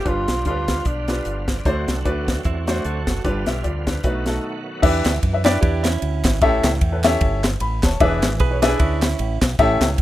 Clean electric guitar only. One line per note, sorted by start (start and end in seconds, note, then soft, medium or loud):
2.46 2.67 C4 medium
2.46 2.67 E4 medium
2.69 2.85 D4 medium
2.69 2.84 F#4 medium
2.85 3.23 F#4 medium
2.85 3.23 A4 medium
5.46 5.60 G4 medium
5.46 5.62 B4 medium
5.61 5.82 E4 medium
5.61 5.83 G4 medium
5.83 6.39 C#4 medium
5.83 6.38 E4 medium
8.40 8.61 G#4 medium
8.40 8.62 B4 medium
8.62 8.78 E4 medium
8.62 8.79 G#4 medium
8.79 9.39 C#4 medium
8.79 9.38 E4 medium